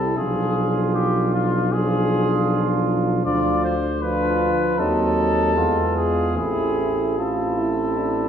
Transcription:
0, 0, Header, 1, 6, 480
1, 0, Start_track
1, 0, Tempo, 770218
1, 109, Time_signature, 4, 2, 24, 8
1, 3468, Tempo, 810811
1, 5080, End_track
2, 0, Start_track
2, 0, Title_t, "Trumpet"
2, 0, Program_c, 0, 56
2, 0, Note_on_c, 0, 69, 56
2, 104, Note_on_c, 0, 68, 54
2, 113, Note_off_c, 0, 69, 0
2, 589, Note_on_c, 0, 67, 47
2, 599, Note_off_c, 0, 68, 0
2, 829, Note_off_c, 0, 67, 0
2, 833, Note_on_c, 0, 65, 59
2, 1074, Note_on_c, 0, 68, 68
2, 1083, Note_off_c, 0, 65, 0
2, 1790, Note_off_c, 0, 68, 0
2, 2030, Note_on_c, 0, 74, 66
2, 2252, Note_off_c, 0, 74, 0
2, 2270, Note_on_c, 0, 72, 60
2, 2502, Note_off_c, 0, 72, 0
2, 2507, Note_on_c, 0, 71, 65
2, 2980, Note_on_c, 0, 69, 72
2, 2990, Note_off_c, 0, 71, 0
2, 3702, Note_off_c, 0, 69, 0
2, 3705, Note_on_c, 0, 68, 53
2, 3938, Note_off_c, 0, 68, 0
2, 3945, Note_on_c, 0, 68, 56
2, 4429, Note_on_c, 0, 69, 45
2, 4438, Note_off_c, 0, 68, 0
2, 5080, Note_off_c, 0, 69, 0
2, 5080, End_track
3, 0, Start_track
3, 0, Title_t, "Flugelhorn"
3, 0, Program_c, 1, 56
3, 0, Note_on_c, 1, 64, 42
3, 90, Note_off_c, 1, 64, 0
3, 113, Note_on_c, 1, 65, 46
3, 1057, Note_off_c, 1, 65, 0
3, 1074, Note_on_c, 1, 65, 45
3, 2008, Note_off_c, 1, 65, 0
3, 2030, Note_on_c, 1, 65, 54
3, 2334, Note_off_c, 1, 65, 0
3, 2506, Note_on_c, 1, 65, 49
3, 2985, Note_on_c, 1, 63, 50
3, 2994, Note_off_c, 1, 65, 0
3, 3468, Note_on_c, 1, 65, 46
3, 3477, Note_off_c, 1, 63, 0
3, 3943, Note_off_c, 1, 65, 0
3, 3950, Note_on_c, 1, 64, 49
3, 4420, Note_off_c, 1, 64, 0
3, 4427, Note_on_c, 1, 64, 44
3, 5080, Note_off_c, 1, 64, 0
3, 5080, End_track
4, 0, Start_track
4, 0, Title_t, "French horn"
4, 0, Program_c, 2, 60
4, 0, Note_on_c, 2, 60, 42
4, 91, Note_off_c, 2, 60, 0
4, 111, Note_on_c, 2, 62, 37
4, 1057, Note_off_c, 2, 62, 0
4, 1076, Note_on_c, 2, 62, 47
4, 2009, Note_off_c, 2, 62, 0
4, 2030, Note_on_c, 2, 62, 44
4, 2334, Note_off_c, 2, 62, 0
4, 2509, Note_on_c, 2, 62, 53
4, 2957, Note_off_c, 2, 62, 0
4, 2982, Note_on_c, 2, 60, 45
4, 3467, Note_on_c, 2, 59, 48
4, 3476, Note_off_c, 2, 60, 0
4, 3945, Note_on_c, 2, 60, 40
4, 3953, Note_off_c, 2, 59, 0
4, 4423, Note_off_c, 2, 60, 0
4, 4426, Note_on_c, 2, 60, 43
4, 5080, Note_off_c, 2, 60, 0
4, 5080, End_track
5, 0, Start_track
5, 0, Title_t, "Trombone"
5, 0, Program_c, 3, 57
5, 0, Note_on_c, 3, 55, 42
5, 90, Note_off_c, 3, 55, 0
5, 111, Note_on_c, 3, 53, 39
5, 1057, Note_off_c, 3, 53, 0
5, 1076, Note_on_c, 3, 53, 50
5, 2009, Note_off_c, 3, 53, 0
5, 2029, Note_on_c, 3, 53, 46
5, 2333, Note_off_c, 3, 53, 0
5, 2506, Note_on_c, 3, 53, 55
5, 2981, Note_on_c, 3, 54, 53
5, 2991, Note_off_c, 3, 53, 0
5, 3463, Note_on_c, 3, 56, 45
5, 3472, Note_off_c, 3, 54, 0
5, 3939, Note_on_c, 3, 57, 38
5, 3948, Note_off_c, 3, 56, 0
5, 4417, Note_off_c, 3, 57, 0
5, 4421, Note_on_c, 3, 65, 58
5, 4661, Note_on_c, 3, 64, 44
5, 4670, Note_off_c, 3, 65, 0
5, 4902, Note_on_c, 3, 62, 52
5, 4911, Note_off_c, 3, 64, 0
5, 5080, Note_off_c, 3, 62, 0
5, 5080, End_track
6, 0, Start_track
6, 0, Title_t, "Bass trombone"
6, 0, Program_c, 4, 57
6, 0, Note_on_c, 4, 36, 46
6, 84, Note_off_c, 4, 36, 0
6, 111, Note_on_c, 4, 35, 49
6, 2004, Note_off_c, 4, 35, 0
6, 2025, Note_on_c, 4, 38, 51
6, 2795, Note_off_c, 4, 38, 0
6, 2980, Note_on_c, 4, 39, 48
6, 3467, Note_on_c, 4, 40, 49
6, 3476, Note_off_c, 4, 39, 0
6, 3942, Note_on_c, 4, 33, 43
6, 3951, Note_off_c, 4, 40, 0
6, 5080, Note_off_c, 4, 33, 0
6, 5080, End_track
0, 0, End_of_file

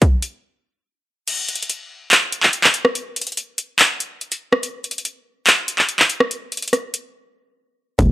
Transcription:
0, 0, Header, 1, 3, 480
1, 0, Start_track
1, 0, Tempo, 419580
1, 1459, Time_signature, 4, 2, 24, 8
1, 9286, End_track
2, 0, Start_track
2, 0, Title_t, "808-style bass"
2, 0, Program_c, 0, 38
2, 9139, Note_on_c, 0, 29, 109
2, 9286, Note_off_c, 0, 29, 0
2, 9286, End_track
3, 0, Start_track
3, 0, Title_t, "Drums"
3, 19, Note_on_c, 9, 42, 78
3, 20, Note_on_c, 9, 36, 94
3, 134, Note_off_c, 9, 36, 0
3, 134, Note_off_c, 9, 42, 0
3, 257, Note_on_c, 9, 42, 88
3, 371, Note_off_c, 9, 42, 0
3, 1459, Note_on_c, 9, 42, 74
3, 1459, Note_on_c, 9, 49, 94
3, 1573, Note_off_c, 9, 49, 0
3, 1574, Note_off_c, 9, 42, 0
3, 1699, Note_on_c, 9, 42, 59
3, 1779, Note_off_c, 9, 42, 0
3, 1779, Note_on_c, 9, 42, 59
3, 1859, Note_off_c, 9, 42, 0
3, 1859, Note_on_c, 9, 42, 58
3, 1939, Note_off_c, 9, 42, 0
3, 1939, Note_on_c, 9, 42, 80
3, 2054, Note_off_c, 9, 42, 0
3, 2419, Note_on_c, 9, 39, 122
3, 2419, Note_on_c, 9, 42, 82
3, 2533, Note_off_c, 9, 42, 0
3, 2534, Note_off_c, 9, 39, 0
3, 2659, Note_on_c, 9, 42, 89
3, 2774, Note_off_c, 9, 42, 0
3, 2778, Note_on_c, 9, 39, 62
3, 2892, Note_off_c, 9, 39, 0
3, 2894, Note_on_c, 9, 42, 75
3, 3009, Note_off_c, 9, 42, 0
3, 3018, Note_on_c, 9, 39, 93
3, 3132, Note_off_c, 9, 39, 0
3, 3134, Note_on_c, 9, 42, 84
3, 3248, Note_off_c, 9, 42, 0
3, 3257, Note_on_c, 9, 37, 96
3, 3372, Note_off_c, 9, 37, 0
3, 3378, Note_on_c, 9, 42, 79
3, 3492, Note_off_c, 9, 42, 0
3, 3618, Note_on_c, 9, 42, 72
3, 3678, Note_off_c, 9, 42, 0
3, 3678, Note_on_c, 9, 42, 61
3, 3738, Note_off_c, 9, 42, 0
3, 3738, Note_on_c, 9, 42, 52
3, 3798, Note_off_c, 9, 42, 0
3, 3798, Note_on_c, 9, 42, 41
3, 3858, Note_off_c, 9, 42, 0
3, 3858, Note_on_c, 9, 42, 79
3, 3973, Note_off_c, 9, 42, 0
3, 4096, Note_on_c, 9, 42, 88
3, 4211, Note_off_c, 9, 42, 0
3, 4338, Note_on_c, 9, 39, 120
3, 4338, Note_on_c, 9, 42, 79
3, 4452, Note_off_c, 9, 42, 0
3, 4453, Note_off_c, 9, 39, 0
3, 4579, Note_on_c, 9, 42, 84
3, 4694, Note_off_c, 9, 42, 0
3, 4819, Note_on_c, 9, 42, 47
3, 4933, Note_off_c, 9, 42, 0
3, 4939, Note_on_c, 9, 42, 79
3, 5053, Note_off_c, 9, 42, 0
3, 5177, Note_on_c, 9, 37, 95
3, 5291, Note_off_c, 9, 37, 0
3, 5299, Note_on_c, 9, 42, 75
3, 5413, Note_off_c, 9, 42, 0
3, 5538, Note_on_c, 9, 42, 58
3, 5619, Note_off_c, 9, 42, 0
3, 5619, Note_on_c, 9, 42, 61
3, 5698, Note_off_c, 9, 42, 0
3, 5698, Note_on_c, 9, 42, 59
3, 5778, Note_off_c, 9, 42, 0
3, 5778, Note_on_c, 9, 42, 79
3, 5893, Note_off_c, 9, 42, 0
3, 6258, Note_on_c, 9, 42, 79
3, 6259, Note_on_c, 9, 39, 117
3, 6373, Note_off_c, 9, 39, 0
3, 6373, Note_off_c, 9, 42, 0
3, 6499, Note_on_c, 9, 42, 91
3, 6613, Note_off_c, 9, 42, 0
3, 6618, Note_on_c, 9, 39, 61
3, 6733, Note_off_c, 9, 39, 0
3, 6734, Note_on_c, 9, 42, 76
3, 6849, Note_off_c, 9, 42, 0
3, 6858, Note_on_c, 9, 39, 91
3, 6972, Note_off_c, 9, 39, 0
3, 6973, Note_on_c, 9, 42, 82
3, 7088, Note_off_c, 9, 42, 0
3, 7097, Note_on_c, 9, 37, 97
3, 7212, Note_off_c, 9, 37, 0
3, 7219, Note_on_c, 9, 42, 75
3, 7333, Note_off_c, 9, 42, 0
3, 7459, Note_on_c, 9, 42, 58
3, 7518, Note_off_c, 9, 42, 0
3, 7518, Note_on_c, 9, 42, 60
3, 7578, Note_off_c, 9, 42, 0
3, 7578, Note_on_c, 9, 42, 58
3, 7638, Note_off_c, 9, 42, 0
3, 7638, Note_on_c, 9, 42, 59
3, 7698, Note_on_c, 9, 37, 72
3, 7699, Note_off_c, 9, 42, 0
3, 7699, Note_on_c, 9, 42, 79
3, 7813, Note_off_c, 9, 37, 0
3, 7814, Note_off_c, 9, 42, 0
3, 7938, Note_on_c, 9, 42, 88
3, 8052, Note_off_c, 9, 42, 0
3, 9139, Note_on_c, 9, 36, 107
3, 9139, Note_on_c, 9, 42, 74
3, 9253, Note_off_c, 9, 36, 0
3, 9253, Note_off_c, 9, 42, 0
3, 9286, End_track
0, 0, End_of_file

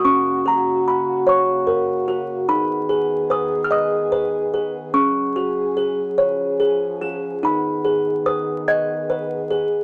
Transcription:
0, 0, Header, 1, 3, 480
1, 0, Start_track
1, 0, Tempo, 814111
1, 31, Time_signature, 6, 3, 24, 8
1, 2911, Tempo, 831025
1, 5742, End_track
2, 0, Start_track
2, 0, Title_t, "Music box"
2, 0, Program_c, 0, 10
2, 28, Note_on_c, 0, 61, 78
2, 28, Note_on_c, 0, 85, 94
2, 270, Note_on_c, 0, 66, 64
2, 277, Note_off_c, 0, 85, 0
2, 281, Note_on_c, 0, 82, 70
2, 499, Note_off_c, 0, 82, 0
2, 517, Note_on_c, 0, 83, 66
2, 746, Note_on_c, 0, 73, 81
2, 759, Note_off_c, 0, 83, 0
2, 760, Note_on_c, 0, 85, 79
2, 984, Note_on_c, 0, 70, 73
2, 986, Note_off_c, 0, 61, 0
2, 1219, Note_off_c, 0, 66, 0
2, 1226, Note_on_c, 0, 66, 71
2, 1268, Note_off_c, 0, 85, 0
2, 1464, Note_off_c, 0, 70, 0
2, 1464, Note_off_c, 0, 73, 0
2, 1465, Note_off_c, 0, 66, 0
2, 1465, Note_on_c, 0, 63, 69
2, 1466, Note_on_c, 0, 83, 95
2, 1705, Note_on_c, 0, 68, 68
2, 1923, Note_off_c, 0, 83, 0
2, 1947, Note_on_c, 0, 71, 70
2, 1954, Note_on_c, 0, 87, 82
2, 2149, Note_on_c, 0, 89, 74
2, 2157, Note_off_c, 0, 87, 0
2, 2185, Note_on_c, 0, 75, 84
2, 2188, Note_off_c, 0, 89, 0
2, 2193, Note_on_c, 0, 87, 89
2, 2423, Note_off_c, 0, 71, 0
2, 2429, Note_off_c, 0, 63, 0
2, 2430, Note_on_c, 0, 71, 75
2, 2668, Note_off_c, 0, 68, 0
2, 2675, Note_on_c, 0, 68, 63
2, 2910, Note_off_c, 0, 75, 0
2, 2911, Note_off_c, 0, 71, 0
2, 2911, Note_on_c, 0, 61, 69
2, 2912, Note_on_c, 0, 85, 87
2, 2913, Note_off_c, 0, 68, 0
2, 2935, Note_off_c, 0, 87, 0
2, 3155, Note_on_c, 0, 66, 58
2, 3391, Note_on_c, 0, 68, 69
2, 3628, Note_off_c, 0, 61, 0
2, 3628, Note_on_c, 0, 73, 73
2, 3630, Note_off_c, 0, 68, 0
2, 3632, Note_off_c, 0, 66, 0
2, 3870, Note_on_c, 0, 68, 68
2, 4089, Note_off_c, 0, 85, 0
2, 4111, Note_on_c, 0, 65, 61
2, 4351, Note_on_c, 0, 63, 69
2, 4352, Note_off_c, 0, 65, 0
2, 4353, Note_off_c, 0, 68, 0
2, 4353, Note_off_c, 0, 73, 0
2, 4361, Note_on_c, 0, 83, 85
2, 4590, Note_on_c, 0, 68, 65
2, 4831, Note_on_c, 0, 71, 65
2, 4831, Note_on_c, 0, 87, 69
2, 4853, Note_off_c, 0, 83, 0
2, 5072, Note_on_c, 0, 92, 88
2, 5074, Note_on_c, 0, 75, 84
2, 5080, Note_off_c, 0, 87, 0
2, 5307, Note_off_c, 0, 71, 0
2, 5313, Note_off_c, 0, 63, 0
2, 5314, Note_on_c, 0, 71, 74
2, 5542, Note_off_c, 0, 68, 0
2, 5549, Note_on_c, 0, 68, 67
2, 5742, Note_off_c, 0, 68, 0
2, 5742, Note_off_c, 0, 71, 0
2, 5742, Note_off_c, 0, 75, 0
2, 5742, Note_off_c, 0, 92, 0
2, 5742, End_track
3, 0, Start_track
3, 0, Title_t, "Brass ensemble"
3, 0, Program_c, 1, 61
3, 0, Note_on_c, 1, 58, 58
3, 0, Note_on_c, 1, 66, 77
3, 26, Note_on_c, 1, 49, 74
3, 1444, Note_off_c, 1, 58, 0
3, 1445, Note_off_c, 1, 66, 0
3, 1449, Note_off_c, 1, 49, 0
3, 1464, Note_on_c, 1, 51, 77
3, 1464, Note_on_c, 1, 59, 66
3, 1467, Note_on_c, 1, 68, 79
3, 2895, Note_off_c, 1, 51, 0
3, 2896, Note_off_c, 1, 59, 0
3, 2897, Note_off_c, 1, 68, 0
3, 2914, Note_on_c, 1, 61, 62
3, 2916, Note_on_c, 1, 54, 67
3, 2918, Note_on_c, 1, 68, 84
3, 3622, Note_off_c, 1, 61, 0
3, 3623, Note_off_c, 1, 54, 0
3, 3624, Note_off_c, 1, 68, 0
3, 3633, Note_on_c, 1, 53, 74
3, 3634, Note_on_c, 1, 68, 77
3, 3636, Note_on_c, 1, 61, 62
3, 4348, Note_off_c, 1, 53, 0
3, 4349, Note_off_c, 1, 68, 0
3, 4350, Note_off_c, 1, 61, 0
3, 4355, Note_on_c, 1, 51, 77
3, 4355, Note_on_c, 1, 59, 68
3, 4357, Note_on_c, 1, 68, 74
3, 5742, Note_off_c, 1, 51, 0
3, 5742, Note_off_c, 1, 59, 0
3, 5742, Note_off_c, 1, 68, 0
3, 5742, End_track
0, 0, End_of_file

